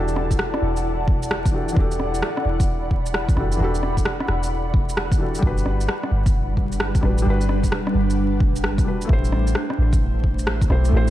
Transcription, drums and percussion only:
0.08 shaker soft
0.16 cross-stick medium
0.31 kick medium
0.31 shaker medium
0.39 cross-stick loud
0.54 cross-stick medium
0.77 shaker medium
1.08 kick loud
1.23 shaker medium
1.31 cross-stick loud
1.46 kick loud
1.46 shaker soft
1.69 shaker medium
1.76 kick loud
1.91 shaker soft
2.00 cross-stick medium
2.15 shaker medium
2.23 cross-stick loud
2.37 cross-stick medium
2.60 kick loud
2.60 shaker medium
2.91 kick medium
3.06 shaker medium
3.14 cross-stick loud
3.29 kick loud
3.29 shaker soft
3.37 cross-stick soft
3.52 shaker medium
3.75 shaker soft
3.83 cross-stick soft
3.97 kick medium
3.97 shaker medium
4.05 cross-stick loud
4.20 cross-stick medium
4.28 cross-stick medium
4.43 shaker medium
4.74 kick loud
4.89 shaker medium
4.97 cross-stick loud
5.12 kick loud
5.12 shaker soft
5.35 shaker medium
5.42 kick loud
5.58 shaker soft
5.66 cross-stick medium
5.81 shaker soft
5.89 cross-stick loud
6.04 cross-stick medium
6.26 kick loud
6.26 shaker medium
6.57 kick medium
6.72 shaker medium
6.80 cross-stick loud
6.95 kick loud
6.95 shaker soft
7.03 cross-stick soft
7.18 shaker medium
7.41 shaker soft
7.49 cross-stick medium
7.64 kick medium
7.64 shaker medium
7.72 cross-stick loud
7.87 cross-stick medium
8.10 shaker soft
8.40 kick loud
8.56 shaker medium
8.64 cross-stick loud
8.78 kick loud
8.78 shaker soft
9.02 shaker medium
9.09 kick loud
9.24 shaker soft
9.32 cross-stick medium
9.47 shaker medium
9.55 cross-stick medium
9.70 cross-stick medium
9.93 kick loud
9.93 shaker medium
10.24 kick medium
10.39 shaker medium
10.47 cross-stick loud
10.61 kick loud
10.61 shaker soft
10.70 cross-stick medium
10.85 shaker medium

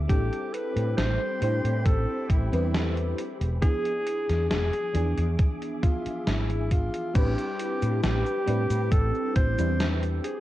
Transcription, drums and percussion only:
0.09 kick loud
0.09 closed hi-hat medium
0.33 closed hi-hat soft
0.54 closed hi-hat medium
0.77 closed hi-hat soft
0.98 snare loud
0.98 closed hi-hat medium
1.42 closed hi-hat medium
1.65 closed hi-hat soft
1.86 kick loud
1.86 closed hi-hat medium
2.30 kick loud
2.30 closed hi-hat medium
2.53 closed hi-hat soft
2.75 snare loud
2.75 closed hi-hat medium
2.97 closed hi-hat soft
3.18 closed hi-hat medium
3.41 closed hi-hat medium
3.62 kick loud
3.62 closed hi-hat medium
3.85 closed hi-hat soft
4.07 closed hi-hat medium
4.29 snare soft
4.29 closed hi-hat medium
4.51 snare loud
4.51 closed hi-hat medium
4.73 closed hi-hat soft
4.95 closed hi-hat medium
5.17 closed hi-hat medium
5.39 kick loud
5.39 closed hi-hat medium
5.62 closed hi-hat soft
5.83 kick loud
5.83 closed hi-hat medium
6.06 closed hi-hat soft
6.27 snare loud
6.27 closed hi-hat medium
6.50 closed hi-hat soft
6.71 kick medium
6.71 closed hi-hat medium
6.94 closed hi-hat medium
7.15 kick loud
7.15 closed hi-hat medium
7.15 crash loud
7.15 cabasa soft
7.38 closed hi-hat soft
7.38 cabasa soft
7.60 closed hi-hat medium
7.82 closed hi-hat medium
7.82 cabasa medium
8.04 snare loud
8.04 closed hi-hat medium
8.04 cabasa soft
8.26 cabasa soft
8.48 closed hi-hat medium
8.71 closed hi-hat medium
8.71 cabasa medium
8.92 kick loud
8.92 closed hi-hat medium
8.92 cabasa soft
9.15 cabasa soft
9.36 kick loud
9.36 closed hi-hat medium
9.59 closed hi-hat medium
9.59 cabasa medium
9.80 snare loud
9.80 closed hi-hat medium
9.80 cabasa soft
10.03 closed hi-hat soft
10.03 cabasa soft
10.24 closed hi-hat medium

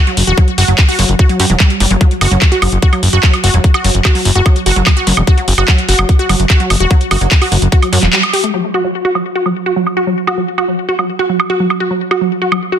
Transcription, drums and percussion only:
0.07 closed hi-hat soft
0.17 open hi-hat loud
0.27 closed hi-hat medium
0.38 kick loud
0.38 closed hi-hat medium
0.48 closed hi-hat soft
0.58 open hi-hat loud
0.68 closed hi-hat soft
0.78 kick loud
0.78 clap loud
0.78 closed hi-hat medium
0.89 open hi-hat medium
0.99 open hi-hat loud
1.09 closed hi-hat soft
1.19 kick loud
1.19 closed hi-hat medium
1.29 closed hi-hat medium
1.40 open hi-hat loud
1.50 closed hi-hat soft
1.60 kick loud
1.60 clap loud
1.60 closed hi-hat medium
1.70 closed hi-hat soft
1.80 open hi-hat loud
1.91 closed hi-hat soft
2.01 kick loud
2.01 closed hi-hat medium
2.11 closed hi-hat medium
2.21 open hi-hat loud
2.21 high woodblock soft
2.31 closed hi-hat medium
2.42 kick loud
2.42 clap loud
2.42 closed hi-hat medium
2.52 closed hi-hat medium
2.62 open hi-hat loud
2.62 high woodblock medium
2.72 closed hi-hat medium
2.82 kick loud
2.82 closed hi-hat medium
2.93 closed hi-hat soft
2.93 high woodblock soft
3.03 open hi-hat loud
3.13 closed hi-hat medium
3.23 kick loud
3.23 clap loud
3.23 closed hi-hat medium
3.33 closed hi-hat medium
3.33 high woodblock soft
3.44 open hi-hat loud
3.54 closed hi-hat soft
3.64 kick loud
3.64 closed hi-hat medium
3.74 closed hi-hat soft
3.74 high woodblock medium
3.84 open hi-hat loud
3.95 closed hi-hat medium
4.05 kick loud
4.05 clap loud
4.05 closed hi-hat medium
4.05 high woodblock soft
4.15 open hi-hat medium
4.25 open hi-hat loud
4.36 closed hi-hat medium
4.46 kick loud
4.46 closed hi-hat medium
4.46 high woodblock soft
4.56 closed hi-hat medium
4.66 open hi-hat loud
4.87 kick loud
4.87 clap loud
4.87 closed hi-hat medium
4.87 high woodblock medium
4.97 closed hi-hat medium
5.07 open hi-hat loud
5.17 closed hi-hat medium
5.17 high woodblock soft
5.27 kick loud
5.27 closed hi-hat medium
5.38 closed hi-hat medium
5.48 open hi-hat loud
5.58 high woodblock soft
5.68 kick loud
5.68 clap loud
5.68 closed hi-hat medium
5.78 closed hi-hat medium
5.89 open hi-hat loud
5.99 high woodblock medium
6.09 kick loud
6.09 closed hi-hat medium
6.19 closed hi-hat medium
6.29 open hi-hat loud
6.29 high woodblock soft
6.40 closed hi-hat medium
6.50 kick loud
6.50 clap loud
6.50 closed hi-hat medium
6.60 closed hi-hat medium
6.70 open hi-hat loud
6.70 high woodblock soft
6.80 closed hi-hat medium
6.91 kick loud
6.91 closed hi-hat medium
7.01 closed hi-hat medium
7.11 open hi-hat loud
7.11 high woodblock medium
7.21 closed hi-hat medium
7.31 kick loud
7.31 clap loud
7.31 closed hi-hat medium
7.42 open hi-hat medium
7.42 high woodblock soft
7.52 open hi-hat loud
7.62 closed hi-hat medium
7.72 kick loud
7.72 closed hi-hat medium
7.82 closed hi-hat medium
7.82 high woodblock soft
7.93 open hi-hat loud
8.03 clap soft
8.03 closed hi-hat medium
8.13 clap loud
8.13 closed hi-hat medium
8.23 closed hi-hat medium
8.23 high woodblock medium
8.34 open hi-hat loud
8.44 closed hi-hat medium
8.54 crash medium
8.74 high woodblock soft
9.15 high woodblock medium
9.46 high woodblock soft
9.87 high woodblock soft
10.27 high woodblock medium
10.58 high woodblock soft
10.99 high woodblock soft
11.40 high woodblock medium
11.70 high woodblock soft
12.11 high woodblock soft
12.52 high woodblock medium

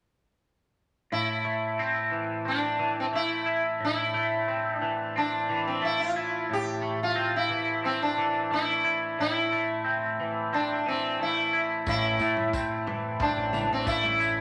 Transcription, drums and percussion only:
11.86 kick loud
11.86 floor tom medium
11.86 tambourine medium
12.19 tambourine medium
12.36 floor tom medium
12.53 kick loud
12.53 tambourine loud
12.87 floor tom medium
13.20 kick loud
13.20 floor tom medium
13.20 tambourine soft
13.53 mid tom medium
13.53 tambourine medium
13.87 kick loud
13.87 tambourine medium
14.03 floor tom medium
14.21 tambourine medium

